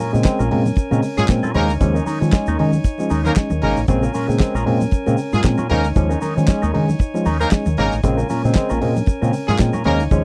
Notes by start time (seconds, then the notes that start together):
Already playing: C#4 A#4 G#5
0.00 A#2 G#3 C#4 F4 A#4, open hi-hat
0.13 A#2 C#3 G#3 C4, shaker
0.24 G#3 C4, muted clean electric guitar stroke, kick, snare, clap, closed hi-hat, muted conga, shaker
0.39 A#1 A#2 G#3 C#4 F4 A#4, shaker
0.51 A#2 G#3 C4 C#4 F4 A#4, open hi-hat, low conga
0.66 high conga, shaker
0.76 muted clean electric guitar stroke, muted fingered electric bass stroke, kick, closed hi-hat, muted conga, shaker
0.91 A#2 C#3 G#3 C4 C#4 F4 A#4, muted conga, shaker
1.02 open hi-hat, shaker
1.17 G#2 A#2 G#3 C#4 F4 G#4, muted clean electric guitar stroke, high conga, shaker
1.28 A#2 G#3 C4, muted clean electric guitar stroke, kick, snare, clap, closed hi-hat, shaker
1.43 A#2 G#3 C#4 F4 A#4, high conga, shaker
1.54 D#2 G#3 A#3 C#4 D#4 A#4 C5 C#5, snare, open hi-hat, low conga
1.69 D2, shaker
1.80 D#2 F3 G#3 C#4, muted clean electric guitar stroke, kick, closed hi-hat, low conga, shaker
1.94 G#3 C#4 D#4 A#4, shaker
2.06 D#3 G#3 C#4 D#4 A#4, open hi-hat, high conga, shaker
2.21 D#3 F3 G#3 C#4, shaker
2.32 G#3 C#4, muted clean electric guitar stroke, kick, snare, clap, closed hi-hat, muted conga, shaker
2.47 D#2 D#3 G#3 C#4 D#4 A#4, shaker
2.59 D#3 G#3 C#4 D#4 A#4, open hi-hat, low conga
2.73 high conga, shaker
2.84 muted clean electric guitar stroke, kick, closed hi-hat, muted conga, shaker
2.98 F3 G#3 C#4, muted clean electric guitar stroke, muted conga, shaker
3.10 D#2 G#3 C#4 D#4 A#4, open hi-hat, shaker
3.24 D#3 G#3 A#3 C#4 D#4 A#4 C5, high conga, shaker
3.36 G#3 C#4, muted clean electric guitar stroke, kick, snare, clap, closed hi-hat, shaker
3.50 D#2 D#3, muted clean electric guitar stroke, muted conga, high conga, shaker
3.62 G#1 G#3 A#3 C#4 D#4 A#4, snare, open hi-hat, low conga
3.77 A1, muted clean electric guitar stroke, shaker
3.88 A#1 C#3 G#3 C4 C#4 A#4 G#5, muted clean electric guitar stroke, kick, closed hi-hat, low conga, shaker
4.02 G#3 C#4 F4 A#4, shaker
4.14 A#2 G#3 C#4 F4 A#4, open hi-hat, high conga, shaker
4.28 A#2 C#3 G#3 C4, muted clean electric guitar stroke, shaker
4.39 G#3 C4, muted clean electric guitar stroke, kick, snare, clap, closed hi-hat, muted conga, shaker
4.55 A#1 A#2 G#3 C#4 F4 A#4, shaker
4.66 A#2 G#3 C4 C#4 F4 A#4, open hi-hat, low conga
4.81 muted clean electric guitar stroke, high conga, shaker
4.91 muted fingered electric bass stroke, muted clean electric guitar stroke, kick, closed hi-hat, shaker
5.06 A#2 C#3 G#3 C4 C#4 F4 A#4, muted conga, shaker
5.17 open hi-hat, shaker
5.33 G#2 A#2 G#3 C#4 F4 G#4, muted clean electric guitar stroke, high conga, shaker
5.43 A#2 G#3 C4, muted clean electric guitar stroke, kick, snare, clap, closed hi-hat, shaker
5.58 A#2 G#3 C#4 F4 A#4, high conga, shaker
5.70 D#2 G#3 A#3 C#4 D#4 A#4 C5 C#5, snare, open hi-hat, low conga
5.84 D2, shaker
5.95 D#2 F3 G#3 C#4, muted clean electric guitar stroke, kick, closed hi-hat, muted conga, low conga, shaker
6.09 G#3 C#4 D#4 A#4, shaker
6.21 D#3 G#3 C#4 D#4 A#4, open hi-hat, high conga, shaker
6.36 D#3 F3 G#3 C#4, muted clean electric guitar stroke, shaker
6.48 G#3 C#4, muted clean electric guitar stroke, kick, snare, clap, closed hi-hat, muted conga, shaker
6.62 D#2 D#3 G#3 C#4 D#4 A#4, shaker
6.73 D#3 G#3 C#4 D#4 A#4, open hi-hat, low conga
6.88 muted clean electric guitar stroke, high conga, shaker
6.99 muted clean electric guitar stroke, kick, closed hi-hat, muted conga, shaker
7.14 F3 G#3 C#4, muted clean electric guitar stroke, muted conga, shaker
7.25 D#2 G#3 C#4 D#4 A#4, open hi-hat, shaker
7.39 D#3 G#3 A#3 C#4 D#4 A#4 C5, high conga, shaker
7.51 G#3 C#4, kick, snare, clap, closed hi-hat, shaker
7.66 D#2 D#3, muted clean electric guitar stroke, muted conga, high conga, shaker
7.77 G#1 G#3 A#3 C#4 D#4 A#4, snare, open hi-hat, low conga
7.92 A1, muted clean electric guitar stroke, shaker
8.03 A#1 C#3 G#3 C4 C#4 A#4, muted clean electric guitar stroke, kick, closed hi-hat, muted conga, low conga, shaker
8.17 G#3 C#4 F4 A#4, muted conga, shaker
8.29 A#2 G#3 C#4 F4 A#4, open hi-hat, high conga, shaker
8.44 A#2 C#3 G#3 C4, muted clean electric guitar stroke, shaker
8.55 G#3 C4, muted clean electric guitar stroke, kick, snare, clap, closed hi-hat, shaker
8.70 A#1 A#2 G#3 C#4 F4 A#4, muted conga, shaker
8.81 A#2 G#3 C4 C#4 F4 A#4, open hi-hat, low conga
8.96 high conga, shaker
9.06 muted clean electric guitar stroke, muted fingered electric bass stroke, kick, closed hi-hat, muted conga, shaker
9.22 A#2 C#3 G#3 C4 C#4 F4 A#4, muted conga, shaker
9.33 open hi-hat, shaker
9.48 G#2 A#2 G#3 C#4 F4 G#4, muted clean electric guitar stroke, high conga, shaker
9.58 A#2 G#3 C4, muted clean electric guitar stroke, kick, snare, clap, closed hi-hat, muted conga, shaker
9.73 A#2 G#3 C#4 F4 A#4, muted conga, high conga, shaker
9.84 D#2 G#3 A#3 C#4 D#4 A#4 C5 C#5, open hi-hat, low conga
9.99 D2, shaker
10.11 D#2 F3 G#3 C#4, muted clean electric guitar stroke, kick, closed hi-hat, low conga, shaker